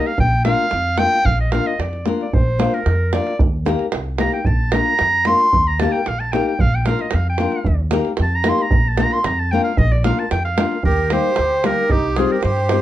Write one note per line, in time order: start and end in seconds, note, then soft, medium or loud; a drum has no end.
0.00 0.11 A#3 medium
0.00 0.11 D#4 medium
0.00 0.12 G4 medium
0.00 0.12 A#4 medium
0.06 0.19 F5 medium
0.06 davul high soft
0.18 0.51 A#1 medium
0.18 0.44 G5 loud
0.18 davul low medium
0.45 0.64 A#3 medium
0.45 0.65 D4 soft
0.45 0.65 F4 medium
0.45 0.65 A#4 medium
0.45 1.00 F5 loud
0.45 davul high medium
0.59 davul high soft
0.71 1.05 F2 medium
0.71 davul high medium
0.98 1.17 A#3 medium
0.98 1.18 D4 medium
0.98 1.18 F4 medium
0.98 1.18 A#4 medium
0.98 1.27 G5 loud
0.98 davul high medium
1.12 davul high soft
1.25 1.58 A#1 medium
1.25 1.40 F5 loud
1.25 davul low medium
1.39 1.53 D#5 medium
1.39 davul high soft
1.52 1.72 A#3 medium
1.52 1.72 D4 soft
1.52 1.72 F4 medium
1.52 1.72 A#4 medium
1.52 1.68 F5 loud
1.52 davul high medium
1.66 1.82 D#5 medium
1.66 davul high soft
1.79 2.11 F2 medium
1.79 2.07 D5 medium
1.79 davul high medium
1.93 davul high soft
2.06 2.25 A#3 medium
2.06 2.25 D4 medium
2.06 2.25 F4 medium
2.06 2.26 A#4 medium
2.06 davul high medium
2.21 2.36 D5 medium
2.21 davul high soft
2.33 2.65 A#1 medium
2.33 2.75 C5 loud
2.33 davul low medium
2.59 2.78 A#3 medium
2.59 2.79 D4 soft
2.59 2.79 F4 medium
2.59 2.79 A#4 medium
2.59 davul high medium
2.74 3.13 A#4 medium
2.74 davul high soft
2.86 3.18 F2 medium
2.86 davul high medium
3.13 3.32 A#3 medium
3.13 3.32 D4 medium
3.13 3.32 F4 medium
3.13 3.33 A#4 medium
3.13 3.38 D5 medium
3.13 davul high medium
3.27 davul high soft
3.39 3.72 D#2 loud
3.39 davul low loud
3.65 3.85 A#3 medium
3.65 3.85 D#4 medium
3.65 3.86 G4 medium
3.65 3.86 A#4 medium
3.65 davul high medium
3.79 davul high soft
3.92 4.26 C2 medium
3.92 davul high medium
4.18 4.38 A#3 medium
4.18 4.39 D#4 medium
4.18 4.39 G4 medium
4.18 4.39 A#4 medium
4.18 4.33 A#5 loud
4.18 davul high medium
4.32 4.48 G5 medium
4.32 davul high soft
4.45 4.79 A#1 medium
4.45 4.75 A5 loud
4.45 davul low medium
4.72 4.92 A#3 medium
4.72 4.92 D4 medium
4.72 4.92 F4 medium
4.72 4.93 A#4 medium
4.72 5.28 A#5 loud
4.72 davul high medium
4.86 davul high soft
4.99 5.32 F2 medium
4.99 davul high medium
5.25 5.45 A#3 medium
5.25 5.46 D4 medium
5.25 5.46 F4 medium
5.25 5.46 A#4 medium
5.25 5.68 C6 loud
5.25 davul high medium
5.40 davul high soft
5.53 5.85 D#2 medium
5.53 davul low medium
5.67 5.81 A#5 medium
5.80 5.99 A#3 medium
5.80 5.99 D#4 medium
5.80 6.00 G4 medium
5.80 6.00 A#4 medium
5.80 5.94 A5 medium
5.80 davul high medium
5.92 6.09 G5 medium
5.92 davul high soft
6.06 6.39 A#1 medium
6.06 6.21 F5 medium
6.06 davul high medium
6.20 6.33 A5 medium
6.20 davul high soft
6.32 6.52 A#3 medium
6.32 6.52 D#4 medium
6.32 6.53 G4 medium
6.32 6.53 A#4 medium
6.32 6.46 G5 medium
6.32 davul high medium
6.46 6.62 G5 medium
6.46 davul high soft
6.59 6.92 A#1 medium
6.59 6.76 F5 loud
6.59 davul low medium
6.75 6.87 G5 medium
6.86 7.05 A#3 medium
6.86 7.05 D4 medium
6.86 7.06 F4 soft
6.86 7.06 A#4 medium
6.86 7.03 F5 medium
6.86 davul high medium
6.99 7.16 D#5 medium
6.99 davul high soft
7.11 7.45 F2 medium
7.11 davul high medium
7.15 7.28 F5 medium
7.29 7.77 G5 medium
7.38 7.58 A#3 medium
7.38 7.58 D4 soft
7.38 7.59 F4 medium
7.38 7.58 A#4 medium
7.38 davul high medium
7.52 davul high soft
7.65 7.98 D#2 medium
7.65 davul low medium
7.91 8.11 A#3 medium
7.91 8.11 D#4 medium
7.91 8.11 G4 medium
7.91 8.11 A#4 medium
7.91 davul high medium
8.05 davul high soft
8.17 8.51 F2 medium
8.17 davul high medium
8.22 8.37 A5 loud
8.35 8.50 A#5 loud
8.44 8.64 A#3 medium
8.44 8.64 D#4 medium
8.44 8.64 G4 soft
8.44 8.65 A#4 medium
8.44 davul high medium
8.49 8.64 C6 loud
8.58 8.90 A#5 medium
8.58 davul high soft
8.71 9.04 A#1 medium
8.71 davul low loud
8.88 9.01 A5 loud
8.97 9.17 A#3 medium
8.97 9.18 D4 medium
8.97 9.18 F4 medium
8.97 9.18 A#4 medium
8.97 9.14 A#5 loud
8.97 davul high medium
9.11 9.26 C6 loud
9.11 davul high soft
9.24 9.57 F2 loud
9.24 9.41 A#5 medium
9.24 davul high medium
9.39 9.53 A5 loud
9.51 9.71 A#3 medium
9.51 9.71 D4 medium
9.51 9.71 F4 medium
9.51 9.72 A#4 medium
9.51 9.63 G5 loud
9.64 9.79 F5 medium
9.64 davul high soft
9.77 10.10 A#1 loud
9.77 9.94 D#5 loud
9.77 davul low medium
9.92 10.04 D5 medium
9.92 davul high soft
10.04 10.23 A#3 medium
10.04 10.23 D4 medium
10.04 10.24 F4 medium
10.04 10.24 A#4 medium
10.04 10.21 F5 medium
10.04 davul high medium
10.18 10.31 A5 medium
10.18 davul high soft
10.31 10.63 F2 medium
10.31 10.44 G5 medium
10.31 davul high medium
10.45 10.81 F5 medium
10.45 davul high soft
10.57 10.76 A#3 medium
10.57 10.76 D4 medium
10.57 10.77 F4 medium
10.57 10.77 A#4 medium
10.57 davul high medium
10.72 davul high soft
10.83 11.17 D#2 loud
10.83 11.09 G4 medium
10.83 11.14 A#4 medium
10.83 davul low medium
11.10 11.29 G3 medium
11.10 11.30 A#3 medium
11.10 11.30 D#4 medium
11.10 11.63 G4 medium
11.10 11.30 G4 medium
11.10 11.67 C5 loud
11.10 davul high medium
11.36 11.70 D2 medium
11.36 davul high medium
11.51 davul high soft
11.64 11.82 G3 medium
11.64 11.83 A#3 medium
11.64 11.83 D#4 medium
11.64 11.91 G4 medium
11.64 11.84 G4 medium
11.64 11.93 A#4 loud
11.64 davul high medium
11.90 12.23 C2 medium
11.90 12.16 D#4 medium
11.90 12.19 G4 loud
11.90 davul low medium
12.16 12.36 G3 medium
12.16 12.36 C4 medium
12.16 12.36 D#4 medium
12.16 12.31 F4 medium
12.16 12.37 G4 medium
12.16 12.33 G#4 medium
12.16 davul high medium
12.31 12.43 G4 medium
12.31 12.45 A#4 medium
12.43 12.76 G2 loud
12.43 12.82 G4 medium
12.43 12.82 C5 loud
12.43 davul high medium
12.57 davul high soft
12.69 12.82 G3 medium
12.69 12.82 C4 medium
12.69 12.82 D#4 medium
12.69 12.82 G4 medium
12.69 davul high medium